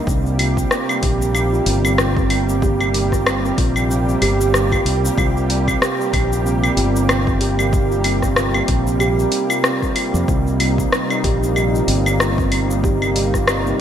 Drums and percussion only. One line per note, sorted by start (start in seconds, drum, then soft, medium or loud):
0.07 kick loud
0.07 shaker medium
0.26 shaker soft
0.39 open hi-hat medium
0.39 claves medium
0.57 kick medium
0.57 shaker medium
0.71 cross-stick medium
0.71 shaker medium
0.89 claves medium
0.89 shaker soft
1.03 kick loud
1.03 open hi-hat medium
1.22 shaker medium
1.35 claves medium
1.35 shaker medium
1.54 shaker soft
1.66 open hi-hat medium
1.85 claves medium
1.85 shaker medium
1.98 cross-stick loud
1.98 shaker medium
2.17 kick loud
2.17 shaker soft
2.30 open hi-hat medium
2.30 claves medium
2.49 shaker medium
2.62 kick loud
2.62 shaker medium
2.81 claves medium
2.81 shaker soft
2.94 open hi-hat medium
3.12 kick medium
3.12 cross-stick soft
3.12 shaker medium
3.27 cross-stick loud
3.27 claves medium
3.27 shaker medium
3.45 shaker soft
3.58 kick loud
3.58 open hi-hat medium
3.76 claves medium
3.76 shaker medium
3.91 shaker medium
4.09 shaker soft
4.22 open hi-hat medium
4.22 claves medium
4.41 shaker medium
4.54 cross-stick medium
4.54 shaker medium
4.72 kick medium
4.72 claves medium
4.72 shaker soft
4.86 open hi-hat medium
5.05 shaker medium
5.18 kick loud
5.18 claves medium
5.18 shaker medium
5.37 shaker soft
5.50 open hi-hat medium
5.68 kick medium
5.68 claves medium
5.68 shaker medium
5.82 cross-stick loud
5.82 shaker medium
6.01 shaker soft
6.13 kick loud
6.13 open hi-hat medium
6.13 claves medium
6.33 shaker medium
6.46 shaker medium
6.64 claves medium
6.64 shaker soft
6.77 open hi-hat medium
6.96 shaker medium
7.09 cross-stick loud
7.09 claves medium
7.09 shaker medium
7.27 kick loud
7.27 shaker soft
7.41 open hi-hat medium
7.59 claves medium
7.59 shaker medium
7.73 kick loud
7.73 shaker medium
7.92 shaker soft
8.04 open hi-hat medium
8.04 claves medium
8.22 kick medium
8.22 cross-stick soft
8.22 shaker medium
8.36 cross-stick loud
8.36 shaker soft
8.54 claves medium
8.54 shaker soft
8.68 kick loud
8.68 open hi-hat medium
8.87 shaker medium
9.00 claves medium
9.00 shaker medium
9.19 shaker soft
9.32 open hi-hat medium
9.50 claves medium
9.50 shaker medium
9.64 cross-stick loud
9.64 shaker medium
9.82 kick medium
9.82 shaker soft
9.96 open hi-hat medium
9.96 claves medium
10.15 shaker medium
10.28 kick loud
10.28 shaker medium
10.47 shaker soft
10.60 open hi-hat medium
10.60 claves medium
10.78 kick medium
10.78 shaker medium
10.92 cross-stick loud
10.92 shaker medium
11.10 claves medium
11.10 shaker soft
11.24 kick loud
11.24 open hi-hat loud
11.43 shaker medium
11.56 claves medium
11.56 shaker medium
11.75 shaker soft
11.88 open hi-hat loud
12.06 claves medium
12.06 shaker medium
12.20 cross-stick loud
12.20 shaker medium
12.38 kick loud
12.38 shaker soft
12.52 open hi-hat medium
12.52 claves medium
12.71 shaker medium
12.84 kick loud
12.84 shaker medium
13.02 claves medium
13.02 shaker soft
13.16 open hi-hat medium
13.34 kick medium
13.34 cross-stick soft
13.34 shaker medium
13.48 cross-stick loud
13.48 claves medium
13.48 shaker medium
13.67 shaker soft